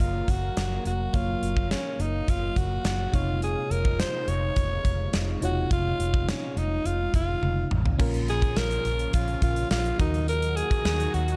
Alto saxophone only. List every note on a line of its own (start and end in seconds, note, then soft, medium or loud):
0.01 0.31 F4 medium
0.30 0.86 F#4 medium
0.87 1.17 F#4 medium
1.15 1.71 F4 medium
1.72 2.03 C#4 medium
2.01 2.31 D#4 medium
2.30 2.59 F4 medium
2.57 3.16 F#4 loud
3.15 3.43 F4 loud
3.43 3.73 G#4 loud
3.71 4.01 A#4 loud
4.00 4.30 C5 loud
4.29 5.16 C#5 loud
5.45 5.70 F#4 loud
5.73 6.25 F4 loud
6.30 6.59 C#4 medium
6.58 6.87 D#4 medium
6.86 7.14 F4 loud
7.15 7.68 F4 loud
8.29 8.59 G#4 loud
8.58 9.14 A#4 loud
9.14 9.41 F4 medium
9.43 9.69 F4 medium
9.71 9.98 F4 loud
10.01 10.27 D#4 medium
10.29 10.58 A#4 loud
10.56 11.15 G#4 loud
11.14 11.36 F#4 medium